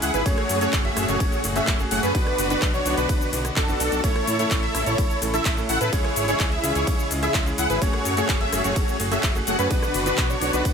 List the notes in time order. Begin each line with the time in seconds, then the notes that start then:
Already playing: C#3 E4 G#4
0.02 C#2 E4 G#4 F#5, open hi-hat, cabasa
0.14 G#1 E4 G#4 B4, closed hi-hat, cabasa
0.25 F#1 A2 A3 C#4 F#4 G#4 C#5, kick, closed hi-hat, ride, cabasa
0.38 cross-stick, closed hi-hat
0.49 F#2, open hi-hat, cabasa
0.61 A3 C#4 F#4 G#4 C#5, closed hi-hat, cabasa
0.73 F#1, kick, clap, closed hi-hat, ride, cabasa
0.85 A3 C#4 F#4 G#4 E5, closed hi-hat
0.96 F#1 A3 C#4 F#4 G#4, cross-stick, open hi-hat, cabasa
1.08 F#1 A3 C#4 F#4 G#4 C#5, closed hi-hat, cabasa
1.20 F#1, kick, closed hi-hat, ride, cabasa
1.32 closed hi-hat, cabasa
1.43 F#1 A3 C#4 F#4 G#4, open hi-hat, cabasa
1.56 A3 C#4 F#4 G#4 E5, cross-stick, closed hi-hat, cabasa
1.67 F#1, kick, clap, closed hi-hat, ride, cabasa
1.79 A3 C#4 F#4 G#4, closed hi-hat, cabasa
1.91 F#1 A3 C#4 F#4 G#4 F#5, open hi-hat, cabasa
2.03 F#2 A3 C#4 F#4 G#4 B4, closed hi-hat, cabasa
2.14 B1 B2 D3 B3 D4 F#4 B4, kick, closed hi-hat, ride, cabasa
2.27 cross-stick, closed hi-hat
2.38 F#1, open hi-hat, cabasa
2.50 B2 B3 D4 F#4 B4, closed hi-hat, cabasa
2.62 B1, kick, clap, closed hi-hat, ride, cabasa
2.74 D4 F#4 C#5, closed hi-hat, cabasa
2.85 B1 B2 B3 D4 F#4 B4, open hi-hat, cabasa
2.97 B1 D4 F#4 B4, closed hi-hat, cabasa
3.09 B1, kick, closed hi-hat, ride, cabasa
3.21 closed hi-hat, cabasa
3.32 B1 B2 B3 D4 F#4 B4, open hi-hat, cabasa
3.45 cross-stick, closed hi-hat, cabasa
3.56 F#1 D4 F#4 A4, kick, clap, closed hi-hat, ride, cabasa
3.68 B2 B3 D4 F#4 B4, closed hi-hat, cabasa
3.80 B1, open hi-hat, cabasa
3.92 B1, closed hi-hat, cabasa
4.03 A1 A2 C#3 A3 C#4 E4 A4 C#5, kick, closed hi-hat, ride, cabasa
4.16 cross-stick, closed hi-hat
4.27 A2, open hi-hat, cabasa
4.39 A2 A3 C#4 E4 A4 C#5, closed hi-hat, cabasa
4.51 A1, kick, clap, closed hi-hat, ride, cabasa
4.63 E4 A4 E5, closed hi-hat
4.74 A1 A2 A3 C#4 E4 A4, cross-stick, open hi-hat, cabasa
4.86 A1 E4 A4 C#5, closed hi-hat, cabasa
4.98 A1, kick, closed hi-hat, ride, cabasa
5.10 closed hi-hat, cabasa
5.21 A1 A2 A3 C#4 E4 A4, open hi-hat, cabasa
5.34 E4 A4 E5, cross-stick, closed hi-hat, cabasa
5.45 A1, kick, clap, closed hi-hat, ride, cabasa
5.57 A2 A3 C#4 E4 A4, closed hi-hat, cabasa
5.69 A1 E4 A4 F#5, open hi-hat, cabasa
5.81 A2 E4 A4 B4, closed hi-hat, cabasa
5.92 C#2 C#3 G#3 C#4 E4 G#4 C#5, kick, closed hi-hat, ride, cabasa
6.05 cross-stick, closed hi-hat
6.16 G#1, open hi-hat, cabasa
6.28 C#3 G#3 C#4 E4 G#4 C#5, closed hi-hat, cabasa
6.40 C#2, kick, clap, closed hi-hat, ride, cabasa
6.52 E4 G#4 E5, closed hi-hat
6.63 C#2 C#3 G#3 C#4 E4 G#4, open hi-hat, cabasa
6.75 C#2 E4 G#4 C#5, closed hi-hat, cabasa
6.87 C#2, kick, closed hi-hat, ride, cabasa
6.99 closed hi-hat, cabasa
7.10 C#2 C#3 G#3 C#4 E4 G#4, open hi-hat, cabasa
7.23 E4 G#4 E5, cross-stick, closed hi-hat, cabasa
7.34 C#2, kick, clap, closed hi-hat, ride, cabasa
7.46 C#3 G#3 C#4 E4 G#4, closed hi-hat, cabasa
7.58 C#2 E4 G#4 F#5, open hi-hat, cabasa
7.70 G#1 E4 G#4 B4, closed hi-hat, cabasa
7.81 F#1 A2 A3 C#4 F#4 G#4 C#5, kick, closed hi-hat, ride, cabasa
7.93 cross-stick, closed hi-hat
8.05 F#2, open hi-hat, cabasa
8.17 A3 C#4 F#4 G#4 C#5, closed hi-hat, cabasa
8.29 F#1, kick, clap, closed hi-hat, ride, cabasa
8.41 A3 C#4 F#4 G#4 E5, closed hi-hat
8.52 F#1 A3 C#4 F#4 G#4, cross-stick, open hi-hat, cabasa
8.64 F#1 A3 C#4 F#4 G#4 C#5, closed hi-hat, cabasa
8.76 F#1, kick, closed hi-hat, ride, cabasa
8.88 closed hi-hat, cabasa
8.99 F#1 A3 C#4 F#4 G#4, open hi-hat, cabasa
9.12 A3 C#4 F#4 G#4 E5, cross-stick, closed hi-hat, cabasa
9.23 F#1, kick, clap, closed hi-hat, ride, cabasa
9.35 A3 C#4 F#4 G#4, closed hi-hat, cabasa
9.47 F#1 A3 C#4 F#4 G#4 F#5, open hi-hat, cabasa
9.59 F#2 A3 C#4 F#4 G#4 B4, closed hi-hat, cabasa
9.70 B1 B2 D3 B3 D4 F#4 B4, kick, closed hi-hat, ride, cabasa
9.82 cross-stick, closed hi-hat, cabasa
9.94 F#1, open hi-hat, cabasa
10.06 B2 B3 D4 F#4 B4, closed hi-hat, cabasa
10.18 B1, kick, clap, closed hi-hat, ride, cabasa
10.30 D4 F#4 C#5, closed hi-hat, cabasa
10.41 B1 B2 B3 D4 F#4 B4, open hi-hat, cabasa
10.53 B1 D4 F#4 B4, closed hi-hat, cabasa
10.65 B1, kick, closed hi-hat, ride, cabasa